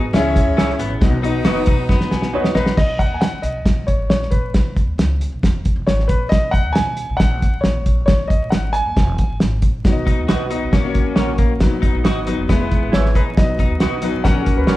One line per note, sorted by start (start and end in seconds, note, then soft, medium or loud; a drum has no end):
0.00 0.10 G#2 medium
0.00 0.14 F#3 medium
0.00 0.13 B3 medium
0.00 1.00 G#4 medium
0.13 0.41 C#2 loud
0.13 1.00 E3 medium
0.13 0.78 G#3 medium
0.13 1.00 C#4 medium
0.13 0.55 C#4 medium
0.13 0.84 C#4 medium
0.13 0.78 E4 medium
0.13 0.84 E4 medium
0.13 0.84 G#4 medium
0.13 0.78 C#5 medium
0.13 0.85 E5 loud
0.13 snare loud
0.13 closed hi-hat medium
0.36 kick medium
0.36 closed hi-hat medium
0.46 0.56 D#2 medium
0.57 0.67 C#2 medium
0.57 0.71 C#4 medium
0.57 0.72 E4 medium
0.57 0.72 G#4 medium
0.57 0.72 C#5 medium
0.57 0.73 E5 medium
0.57 snare loud
0.57 closed hi-hat medium
0.70 snare soft
0.79 0.88 G#1 medium
0.79 0.93 B3 medium
0.79 closed hi-hat medium
0.90 1.00 A#1 loud
1.01 1.39 B1 loud
1.01 2.75 D#3 medium
1.01 2.52 F#3 medium
1.01 1.14 B3 medium
1.01 2.75 B3 medium
1.01 1.14 D#4 medium
1.01 2.52 D#4 medium
1.01 1.14 F#4 medium
1.01 2.76 F#4 medium
1.01 2.52 B4 loud
1.01 1.14 D#5 medium
1.01 kick loud
1.01 snare loud
1.01 closed hi-hat medium
1.22 1.74 B3 medium
1.22 1.74 D#4 medium
1.22 1.37 D#4 medium
1.22 1.75 F#4 medium
1.22 1.75 D#5 medium
1.22 closed hi-hat medium
1.44 1.63 F#1 medium
1.44 1.60 D#4 medium
1.44 1.58 F#4 medium
1.44 1.60 F#4 medium
1.44 1.60 B4 medium
1.44 1.60 D#5 loud
1.44 snare loud
1.44 closed hi-hat loud
1.66 1.86 B2 medium
1.66 1.81 D#4 medium
1.66 kick loud
1.66 closed hi-hat medium
1.89 2.08 F#2 loud
1.89 2.31 B3 medium
1.89 kick medium
1.89 snare medium
2.01 snare medium
2.11 2.30 B1 medium
2.11 2.31 G#5 medium
2.11 snare medium
2.22 snare medium
2.33 2.52 D#2 medium
2.33 2.48 D#4 medium
2.33 2.48 F#4 medium
2.33 2.48 B4 medium
2.33 2.57 C#5 medium
2.33 2.49 D#5 medium
2.33 2.53 F#5 medium
2.44 snare medium
2.54 2.65 A#1 medium
2.54 2.69 D#4 medium
2.54 2.76 B4 medium
2.54 2.75 D#5 medium
2.54 snare medium
2.66 snare loud
2.77 3.06 B1 medium
2.77 3.00 D#5 loud
2.77 kick loud
2.77 snare medium
2.77 crash medium
2.99 3.16 F#5 medium
2.99 kick medium
2.99 closed hi-hat medium
3.10 3.20 D#2 medium
3.14 3.21 G#5 medium
3.21 3.44 F#5 medium
3.21 snare loud
3.21 closed hi-hat medium
3.33 muted upright bass stroke soft
3.42 3.62 B1 medium
3.42 3.89 D#5 medium
3.42 closed hi-hat medium
3.66 3.94 A#1 medium
3.66 kick medium
3.66 snare loud
3.66 closed hi-hat medium
3.87 4.08 C#5 medium
3.87 kick medium
3.87 closed hi-hat medium
3.99 4.08 G#1 medium
4.10 4.29 A#1 medium
4.10 4.33 C#5 medium
4.10 snare loud
4.10 closed hi-hat medium
4.22 snare soft
4.31 4.51 A#1 medium
4.31 4.73 B4 medium
4.31 kick medium
4.31 closed hi-hat medium
4.54 4.83 B1 medium
4.54 kick medium
4.54 snare loud
4.54 closed hi-hat medium
4.76 kick medium
4.76 closed hi-hat medium
4.87 4.97 D#2 medium
4.98 5.27 C#2 medium
4.98 snare loud
4.98 closed hi-hat loud
5.21 closed hi-hat medium
5.32 5.42 B1 medium
5.43 5.71 E1 medium
5.43 kick medium
5.43 snare loud
5.43 closed hi-hat medium
5.65 kick medium
5.65 closed hi-hat medium
5.76 5.85 E1 medium
5.87 6.06 G#1 medium
5.87 6.07 C#5 medium
5.87 snare medium
5.87 closed hi-hat medium
5.99 snare soft
6.08 6.28 A#1 medium
6.08 6.31 B4 medium
6.08 kick medium
6.08 closed hi-hat medium
6.29 6.60 B1 loud
6.29 6.53 D#5 loud
6.29 kick loud
6.29 snare medium
6.29 closed hi-hat medium
6.51 6.75 F#5 loud
6.51 kick medium
6.51 closed hi-hat medium
6.66 6.78 D#2 medium
6.72 7.05 B1 loud
6.72 7.20 G#5 medium
6.72 snare loud
6.72 closed hi-hat medium
6.97 closed hi-hat medium
7.09 7.19 B1 medium
7.17 7.48 A#1 loud
7.17 7.59 F#5 medium
7.17 kick medium
7.17 snare loud
7.17 closed hi-hat medium
7.42 kick medium
7.42 closed hi-hat medium
7.54 7.63 C#2 medium
7.61 8.04 C#5 medium
7.61 snare loud
7.61 closed hi-hat medium
7.65 7.84 A#1 medium
7.86 8.05 A#1 medium
7.86 kick medium
7.86 closed hi-hat medium
8.06 8.37 B1 loud
8.06 8.30 C#5 medium
8.06 kick loud
8.06 snare loud
8.06 closed hi-hat medium
8.28 8.52 D#5 medium
8.28 kick medium
8.28 closed hi-hat medium
8.42 8.51 A#1 medium
8.50 8.81 G#1 medium
8.50 8.74 F#5 medium
8.50 snare loud
8.50 closed hi-hat medium
8.73 9.36 G#5 loud
8.73 closed hi-hat medium
8.86 8.95 F#1 medium
8.97 9.25 E1 loud
8.97 kick medium
8.97 snare loud
8.97 closed hi-hat medium
9.18 kick medium
9.18 closed hi-hat medium
9.30 9.39 G#1 medium
9.40 9.60 G#1 medium
9.40 snare loud
9.40 closed hi-hat medium
9.62 9.82 A#1 medium
9.62 kick medium
9.62 closed hi-hat medium
9.84 10.13 B1 loud
9.84 10.73 D#3 medium
9.84 10.73 B3 medium
9.84 10.24 B3 medium
9.84 10.24 D#4 medium
9.84 12.47 F#4 medium
9.84 10.24 F#4 medium
9.84 9.91 C#5 medium
9.84 kick loud
9.84 snare loud
9.84 closed hi-hat medium
9.92 10.27 D#5 medium
10.07 10.20 D#4 medium
10.07 kick medium
10.07 closed hi-hat medium
10.19 10.31 D#2 medium
10.28 10.58 B1 medium
10.28 10.43 D#4 medium
10.28 10.42 F#4 medium
10.28 10.43 F#4 medium
10.28 10.44 B4 medium
10.28 10.44 D#5 medium
10.28 snare loud
10.28 closed hi-hat medium
10.50 10.70 B3 medium
10.50 10.64 D#4 medium
10.50 10.70 D#4 medium
10.50 10.71 F#4 medium
10.50 10.71 D#5 medium
10.50 closed hi-hat medium
10.63 10.72 B1 medium
10.72 11.01 A#1 medium
10.72 11.61 C#3 medium
10.72 10.82 A#3 medium
10.72 11.60 A#3 medium
10.72 10.82 C#4 medium
10.72 11.15 C#4 medium
10.72 10.82 F#4 medium
10.72 10.82 C#5 loud
10.72 kick medium
10.72 snare loud
10.72 closed hi-hat medium
10.84 11.29 A#3 medium
10.84 11.29 C#4 medium
10.84 11.30 F#4 medium
10.84 11.30 C#5 medium
10.95 kick medium
10.95 closed hi-hat medium
11.06 11.16 C#2 medium
11.16 11.36 A#1 medium
11.16 11.31 C#4 medium
11.16 11.30 C#4 medium
11.16 11.32 F#4 medium
11.16 11.32 A#4 medium
11.16 11.32 C#5 medium
11.16 snare loud
11.16 closed hi-hat medium
11.38 11.58 A#1 medium
11.38 11.52 A#3 medium
11.38 kick medium
11.38 closed hi-hat medium
11.60 11.89 B1 medium
11.60 12.48 D#3 medium
11.60 11.99 F#3 medium
11.60 14.22 B3 medium
11.60 12.00 B3 medium
11.60 12.00 D#4 medium
11.60 12.00 B4 medium
11.60 kick loud
11.60 snare loud
11.60 closed hi-hat medium
11.82 11.96 D#4 medium
11.82 kick medium
11.82 closed hi-hat medium
11.95 12.04 A#1 medium
12.04 12.19 D#4 medium
12.04 12.20 F#4 medium
12.04 12.19 F#4 medium
12.04 12.20 B4 medium
12.04 12.20 D#5 medium
12.04 snare loud
12.04 closed hi-hat loud
12.27 12.46 F#3 medium
12.27 12.47 B3 medium
12.27 12.41 D#4 medium
12.27 12.47 D#4 medium
12.27 12.47 B4 medium
12.27 closed hi-hat medium
12.38 12.48 F#1 medium
12.48 12.77 E1 loud
12.48 13.36 E3 medium
12.48 12.58 G#3 medium
12.48 12.91 B3 medium
12.48 12.58 B3 medium
12.48 12.59 E4 medium
12.48 13.36 G#4 medium
12.48 12.59 B4 medium
12.48 kick medium
12.48 snare medium
12.48 closed hi-hat medium
12.60 13.05 G#3 medium
12.60 13.05 B3 medium
12.60 13.05 E4 medium
12.60 13.05 B4 medium
12.71 kick medium
12.71 closed hi-hat medium
12.83 12.92 G#1 medium
12.92 13.12 G#1 medium
12.92 13.07 E4 medium
12.92 13.08 G#4 medium
12.92 13.08 B4 medium
12.92 13.14 C#5 medium
12.92 13.08 E5 medium
12.92 snare loud
12.92 closed hi-hat medium
13.06 snare soft
13.15 13.34 A#1 medium
13.15 13.29 D#4 medium
13.15 13.20 B4 medium
13.15 kick medium
13.15 closed hi-hat medium
13.37 13.65 B1 medium
13.37 14.24 D#3 medium
13.37 13.75 F#3 medium
13.37 13.76 B3 medium
13.37 13.76 D#4 medium
13.37 14.77 F#4 medium
13.37 13.76 B4 medium
13.37 14.28 D#5 loud
13.37 kick loud
13.37 snare loud
13.37 closed hi-hat medium
13.59 13.73 D#4 medium
13.59 kick medium
13.59 closed hi-hat medium
13.70 13.79 D#2 medium
13.80 14.09 B1 medium
13.80 13.95 D#4 medium
13.80 13.95 F#4 medium
13.80 13.96 B4 medium
13.80 13.96 D#5 medium
13.80 snare loud
13.80 closed hi-hat medium
14.02 14.22 F#3 medium
14.02 14.22 B3 medium
14.02 14.16 D#4 medium
14.02 14.22 D#4 medium
14.02 14.22 B4 loud
14.02 closed hi-hat medium
14.14 14.23 B1 medium
14.24 14.53 A#1 loud
14.24 14.77 C#3 medium
14.24 14.33 F#3 medium
14.24 14.34 A#3 medium
14.24 14.66 C#4 medium
14.24 14.77 C#4 medium
14.24 14.34 C#4 medium
14.24 14.35 A#4 medium
14.24 14.58 F#5 medium
14.24 kick medium
14.24 snare medium
14.24 closed hi-hat medium
14.34 14.77 F#3 medium
14.34 14.77 A#3 medium
14.34 14.77 C#4 medium
14.34 14.41 G#4 medium
14.42 14.77 A#4 medium
14.46 kick medium
14.46 closed hi-hat medium
14.57 14.67 C#2 medium
14.57 14.77 B4 medium
14.67 14.77 A#1 medium
14.67 14.77 C#4 medium
14.67 14.77 F#4 medium
14.67 14.77 A#4 medium
14.67 14.77 C#5 medium
14.67 snare loud
14.67 closed hi-hat medium